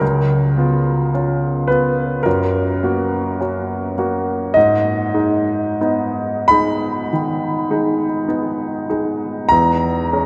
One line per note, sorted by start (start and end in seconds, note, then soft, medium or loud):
0.00 2.22 C#2 medium
0.00 1.69 A#4 medium
0.57 1.10 B3 soft
0.57 1.10 F4 soft
1.14 1.66 C#4 soft
1.14 1.66 F4 soft
1.68 2.22 B3 soft
1.68 2.22 F4 soft
1.68 2.25 B4 medium
2.23 4.52 F#2 medium
2.23 3.39 A#4 medium
2.83 3.37 A#3 soft
2.83 3.37 F#4 soft
3.41 3.94 C#4 soft
3.41 3.95 F#4 soft
3.98 4.51 A#3 soft
3.98 4.52 F#4 soft
4.54 7.10 G#2 medium
4.54 6.50 D#5 medium
5.14 5.77 G#3 soft
5.14 5.77 D#4 soft
5.81 6.47 B3 soft
5.81 6.47 D#4 soft
6.48 7.09 G#3 soft
6.48 7.10 D#4 soft
6.48 9.50 B5 medium
7.13 8.05 D#3 soft
7.71 8.25 G#3 soft
7.71 8.25 D#4 soft
8.28 8.85 B3 soft
8.28 8.85 D#4 soft
8.90 9.48 G#3 soft
8.90 9.48 D#4 soft
9.49 10.26 E2 medium
9.49 10.26 A#5 medium
10.13 10.26 G#3 soft
10.13 10.26 C#4 medium